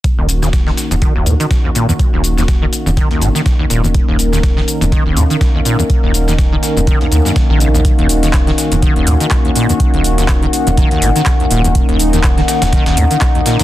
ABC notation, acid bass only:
X:1
M:4/4
L:1/16
Q:"Swing 16ths" 1/4=123
K:Ebm
V:1 name="Acid bass" clef=bass
z E,, z E,, z E, z _F,, E, E,, B,, E, z E,, B,, F,, | z E,, z E,, z E, z _F,, E, E,, B,, E, z E,, B,, F,, | z E,, z E,, z E, z _F,, E, E,, B,, E, z E,, B,, F,, | z E,, z E,, z E, z _F,, E, E,, E,, G,, z E, D,, E,, |
z E,, z E,, z E, z _F,, E, E,, B,, E, z E,, B,, F,, | z E,, z E,, z E, z _F,, E, E,, B,, E, z E,, B,, F,, | z E,, z E,, z E, z _F,, E, E,, B,, E, z E,, B,, F,, |]